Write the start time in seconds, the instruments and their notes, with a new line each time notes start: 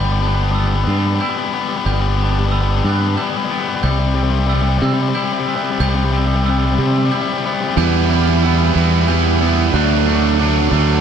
Already playing: fingered electric bass G1, clean electric guitar G3 B3 D4 E4, glockenspiel G6
0.04 distorted electric guitar G3 B3
0.11 distorted electric guitar G3 B3
0.20 distorted electric guitar G3 B3, clean electric guitar D4
0.28 distorted electric guitar G3 B3
0.35 distorted electric guitar G3 B3
0.44 distorted electric guitar G3 B3
0.51 distorted electric guitar G3 B3, glockenspiel E6
0.56 distorted electric guitar G3 B3, clean electric guitar B3
0.66 distorted electric guitar G3 B3
0.75 distorted electric guitar G3 B3
0.83 distorted electric guitar G3 B3
0.87 fingered electric bass G2, distorted electric guitar G3 B3, clean electric guitar D4
0.98 distorted electric guitar G3 B3
1.06 distorted electric guitar G3 B3
1.15 distorted electric guitar G3 B3
1.21 distorted electric guitar G3 B3, clean electric guitar E4, glockenspiel G6
1.29 distorted electric guitar G3 B3
1.38 distorted electric guitar G3 B3
1.45 distorted electric guitar G3 B3
1.53 distorted electric guitar G3 B3, clean electric guitar B3
1.60 distorted electric guitar G3 B3
1.69 distorted electric guitar G3 B3
1.76 distorted electric guitar G3 B3
1.85 fingered electric bass G1, distorted electric guitar G3 B3, clean electric guitar G3, glockenspiel G6
1.93 distorted electric guitar G3 B3
2.00 distorted electric guitar G3 B3
2.08 distorted electric guitar G3 B3
2.16 distorted electric guitar G3 B3, clean electric guitar D4
2.24 distorted electric guitar G3 B3
2.31 distorted electric guitar G3 B3
2.39 distorted electric guitar G3 B3
2.46 distorted electric guitar G3 B3
2.52 distorted electric guitar G3 B3, clean electric guitar B3, glockenspiel E6
2.62 distorted electric guitar G3 B3
2.69 distorted electric guitar G3 B3
2.76 distorted electric guitar G3 B3
2.84 fingered electric bass G2, distorted electric guitar G3 B3, clean electric guitar D4
2.92 distorted electric guitar G3 B3
2.99 distorted electric guitar G3 B3
3.07 distorted electric guitar G3 B3
3.14 distorted electric guitar G3 B3, clean electric guitar E4, glockenspiel G6
3.22 distorted electric guitar G3 B3
3.29 distorted electric guitar G3 B3
3.37 distorted electric guitar G3 B3
3.44 distorted electric guitar G3 B3
3.50 distorted electric guitar G3 B3, clean electric guitar B3
3.60 distorted electric guitar G3 B3
3.68 distorted electric guitar G3 B3
3.76 distorted electric guitar G3 B3
3.83 fingered electric bass C2, clean electric guitar C3, distorted electric guitar C3 G3, glockenspiel G6
3.91 distorted electric guitar C3 G3
3.98 distorted electric guitar C3 G3
4.06 distorted electric guitar C3 G3
4.14 distorted electric guitar C3 G3, clean electric guitar C4
4.23 distorted electric guitar C3 G3
4.30 distorted electric guitar C3 G3
4.39 distorted electric guitar C3 G3
4.46 distorted electric guitar C3 G3, clean electric guitar B3, glockenspiel E6
4.54 distorted electric guitar C3 G3
4.62 distorted electric guitar C3 G3
4.69 distorted electric guitar C3 G3
4.78 distorted electric guitar C3 G3
4.82 fingered electric bass C3, distorted electric guitar C3 G3, clean electric guitar C4
4.92 distorted electric guitar C3 G3
4.99 distorted electric guitar C3 G3
5.08 distorted electric guitar C3 G3
5.15 distorted electric guitar C3 G3, clean electric guitar E4, glockenspiel G6
5.23 distorted electric guitar C3 G3
5.33 distorted electric guitar C3 G3
5.39 distorted electric guitar C3 G3
5.47 distorted electric guitar C3 G3, clean electric guitar B3
5.55 distorted electric guitar C3 G3
5.63 distorted electric guitar C3 G3
5.71 distorted electric guitar C3 G3
5.80 fingered electric bass C2, distorted electric guitar C3 G3, clean electric guitar C3, glockenspiel G6
5.88 distorted electric guitar C3 G3
5.95 distorted electric guitar C3 G3
6.02 distorted electric guitar C3 G3
6.11 distorted electric guitar C3 G3, clean electric guitar C4
6.19 distorted electric guitar C3 G3
6.25 distorted electric guitar C3 G3
6.34 distorted electric guitar C3 G3
6.42 distorted electric guitar C3 G3
6.46 distorted electric guitar C3, clean electric guitar B3, glockenspiel E6
6.50 distorted electric guitar G3
6.55 distorted electric guitar C3 G3
6.64 distorted electric guitar C3 G3
6.71 distorted electric guitar C3 G3
6.79 fingered electric bass C3, distorted electric guitar C3, clean electric guitar C4
6.83 distorted electric guitar C3 G3
6.91 distorted electric guitar C3 G3
6.98 distorted electric guitar C3 G3
7.05 distorted electric guitar G3
7.09 distorted electric guitar C3, clean electric guitar E4, glockenspiel G6
7.14 distorted electric guitar C3 G3
7.21 distorted electric guitar C3 G3
7.28 distorted electric guitar C3 G3
7.38 distorted electric guitar C3 G3
7.45 distorted electric guitar C3 G3, clean electric guitar B3
7.53 distorted electric guitar C3 G3
7.61 distorted electric guitar C3 G3
7.68 distorted electric guitar C3 G3
7.76 fingered electric bass E2, clean electric guitar E2, distorted electric guitar E3 G3 B3 E4, glockenspiel G6
8.09 clean electric guitar G3, distorted electric guitar G3 B3 E4
8.42 distorted electric guitar E3 G3 B3 E4, clean electric guitar B3, glockenspiel E6
8.75 fingered electric bass E2, clean electric guitar E3, distorted electric guitar E3 G3 B3 E4
9.08 distorted electric guitar E3 G3 B3 E4, clean electric guitar G3, glockenspiel G6
9.40 distorted electric guitar G3 B3 E4, clean electric guitar B3
9.73 fingered electric bass D2, distorted electric guitar D3 F#3 A3 D4, clean electric guitar D3, glockenspiel F#6
10.06 distorted electric guitar F#3 A3 D4, clean electric guitar A3
10.39 distorted electric guitar D3 F#3 A3 D4, clean electric guitar D4, glockenspiel D6
10.72 fingered electric bass D2, clean electric guitar D3, distorted electric guitar D3 F#3 A3 D4